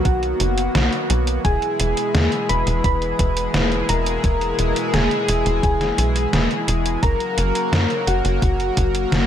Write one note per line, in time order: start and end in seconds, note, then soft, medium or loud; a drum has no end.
0.00 1.41 D#3 medium
0.00 1.41 F#3 medium
0.00 1.41 A#3 medium
0.00 1.41 B3 medium
0.00 1.41 F#4 medium
0.05 0.34 B1 medium
0.05 1.06 F#4 medium
0.05 1.06 F#5 medium
0.05 kick loud
0.05 closed hi-hat medium
0.23 closed hi-hat soft
0.40 0.69 F#1 loud
0.40 closed hi-hat loud
0.58 closed hi-hat medium
0.75 0.89 B1 medium
0.75 snare loud
0.75 closed hi-hat medium
0.93 closed hi-hat soft
1.10 1.39 B1 loud
1.10 closed hi-hat loud
1.27 closed hi-hat medium
1.44 1.59 E1 loud
1.44 6.99 B2 medium
1.44 6.99 E3 medium
1.44 6.99 G#3 medium
1.44 6.99 E4 medium
1.44 6.99 G#4 medium
1.44 2.51 G#4 loud
1.44 2.45 G#5 loud
1.44 kick loud
1.44 closed hi-hat medium
1.62 closed hi-hat soft
1.80 1.94 E1 medium
1.80 closed hi-hat loud
1.97 closed hi-hat medium
2.15 2.29 E2 medium
2.15 snare loud
2.15 closed hi-hat medium
2.32 closed hi-hat soft
2.49 2.64 E1 medium
2.49 2.84 B4 loud
2.49 2.82 B5 loud
2.49 closed hi-hat medium
2.67 2.81 E1 medium
2.67 closed hi-hat medium
2.84 3.13 E1 loud
2.84 3.91 B4 loud
2.84 3.85 B5 loud
2.84 kick loud
2.84 closed hi-hat medium
3.02 closed hi-hat soft
3.19 3.48 E1 loud
3.19 kick loud
3.19 closed hi-hat loud
3.37 closed hi-hat medium
3.54 3.83 E1 loud
3.54 snare loud
3.54 closed hi-hat medium
3.72 closed hi-hat soft
3.89 4.18 E1 medium
3.89 4.95 A#4 loud
3.89 4.90 A#5 loud
3.89 closed hi-hat loud
4.06 closed hi-hat medium
4.24 4.53 E1 medium
4.24 kick loud
4.24 closed hi-hat medium
4.41 closed hi-hat soft
4.59 4.73 E1 medium
4.59 closed hi-hat medium
4.76 closed hi-hat medium
4.94 5.08 E1 loud
4.94 5.63 G#4 loud
4.94 5.59 G#5 medium
4.94 snare loud
4.94 closed hi-hat medium
5.11 closed hi-hat soft
5.28 5.43 E1 medium
5.28 closed hi-hat medium
5.46 5.60 E1 loud
5.46 closed hi-hat medium
5.63 5.92 E1 medium
5.63 6.64 G#4 medium
5.63 6.64 G#5 medium
5.63 kick loud
5.63 closed hi-hat medium
5.81 snare soft
5.81 closed hi-hat soft
5.98 6.27 B1 loud
5.98 closed hi-hat medium
6.16 closed hi-hat medium
6.33 6.48 E1 medium
6.33 snare loud
6.33 closed hi-hat medium
6.51 closed hi-hat soft
6.68 6.97 E1 medium
6.68 closed hi-hat loud
6.86 closed hi-hat medium
7.03 7.17 F#1 loud
7.03 9.27 C#3 medium
7.03 9.27 F#3 medium
7.03 9.27 A#3 medium
7.03 9.27 F#4 medium
7.03 8.09 A#4 loud
7.03 9.27 A#4 medium
7.03 8.03 A#5 loud
7.03 kick loud
7.03 closed hi-hat medium
7.20 closed hi-hat soft
7.38 7.52 F#1 medium
7.38 closed hi-hat medium
7.55 closed hi-hat medium
7.73 7.87 F#2 medium
7.73 snare loud
7.73 closed hi-hat medium
7.90 closed hi-hat soft
8.07 8.22 F#1 medium
8.07 9.27 F#4 loud
8.07 9.27 F#5 loud
8.07 closed hi-hat medium
8.25 8.39 F#1 medium
8.25 closed hi-hat medium
8.42 8.71 F#1 loud
8.42 kick loud
8.42 closed hi-hat medium
8.60 closed hi-hat soft
8.77 9.06 F#1 loud
8.77 kick loud
8.77 closed hi-hat medium
8.95 closed hi-hat medium
9.12 9.27 F#1 loud
9.12 snare loud
9.12 closed hi-hat soft